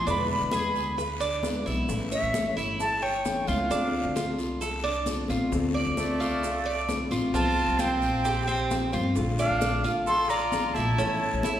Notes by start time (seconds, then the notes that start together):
0.07 E2 B2 D3 G#3 B3 D4 E4 B5, high bongo, high conga, long guiro, maracas
0.29 B5, high bongo, high conga
0.41 E2
0.51 D3 G#3 B3 E4 G#4, high bongo, high conga, short guiro, maracas
0.74 D2, high bongo, high conga, short guiro, maracas
0.97 B4, muted steel-string acoustic guitar stroke, high bongo, high conga, long guiro, maracas
1.20 D4, high conga, maracas
1.43 D3 G#3 B3 E4, high bongo, low bongo, high conga, short guiro, maracas
1.66 B1 D3 G#3 B3 E4, high bongo, high conga, short guiro, maracas
1.88 A1 E3 A3 C#4 E4, high bongo, long guiro, maracas
2.12 C#5 E5, high bongo, high conga, maracas
2.22 A1
2.34 E3 A3 C#4 E4, high bongo, high conga, short guiro, maracas
2.56 G1 E4, high bongo, high conga, short guiro, maracas
2.80 A5, muted steel-string acoustic guitar stroke, high bongo, high conga, long guiro, maracas
3.02 C#5 G5, high conga
3.25 E3 A3 C#4 E4, high bongo, low bongo, high conga, short guiro, maracas
3.47 C#2 A3 C#4 E4 F4 F5, high bongo, high conga, short guiro, maracas
3.70 D2 D3 A3 C4 D4 F4, high bongo, high conga, long guiro, maracas
3.94 high bongo, high conga
4.04 D2
4.15 D3 A3 C4 F4, high bongo, high conga, short guiro, maracas
4.38 C2, high bongo, high conga, short guiro, maracas
4.61 A4, muted steel-string acoustic guitar stroke, high bongo, high conga, long guiro, maracas
4.84 D4, high conga
5.06 D3 A3 C4 F4, high bongo, high conga, short guiro, maracas
5.28 A1 A3 C4 F4, low bongo, high conga, short guiro, maracas
5.51 D2 D3 A3 C4 F4, high bongo, high conga, long guiro, maracas
5.74 D5, high bongo, high conga
5.86 D2
5.97 D3 A3 C4 F4 D5, high bongo, high conga, short guiro, maracas
6.20 C2 F4, high bongo, high conga, short guiro, maracas
6.42 muted steel-string acoustic guitar stroke, high bongo, high conga, long guiro, maracas
6.66 D5, high conga
6.88 D3 A3 C4 F4, high bongo, low bongo, high conga, short guiro, maracas
7.10 A1 A3 C4 F4, high bongo, high conga, short guiro, maracas
7.34 C2 C3 F3 A#3 C4 F4 A5, high bongo, high conga, long guiro, maracas
7.57 high bongo, high conga
7.68 C2
7.79 F3 A#3 C4 F4 G5, high bongo, high conga, short guiro, maracas
8.02 A#1, high bongo, high conga, short guiro, maracas
8.24 G4, muted steel-string acoustic guitar stroke, high bongo, high conga, long guiro, maracas
8.47 C4, high conga, maracas
8.70 F3 A#3 C4 F4, high bongo, low bongo, high conga, short guiro, maracas
8.92 G2 F3 A#3 C4 F4, high bongo, high conga, short guiro, maracas
9.15 A#1 D3 A3 D4 F4, high bongo, high conga, long guiro, maracas
9.39 D4 D5 F5, high bongo, high conga, maracas
9.50 A#1
9.61 D3 A3 F4, high bongo, high conga, short guiro, maracas
9.84 A1 F4, high bongo, high conga, short guiro, maracas
10.06 A4 C6, muted steel-string acoustic guitar stroke, high bongo, high conga, long guiro, maracas
10.29 F4 D5 A#5, high conga, maracas
10.52 D3 A3 D4 F4, high bongo, low bongo, high conga, short guiro, maracas
10.74 A#1 A3 D4 E4 F4 A5, high bongo, high conga, short guiro, maracas
10.97 A1 E3 A3 C#4 E4, high bongo, high conga, long guiro, maracas
11.20 high bongo, high conga
11.33 A1
11.43 E3 A3 C#4 E4, high bongo, high conga, short guiro, maracas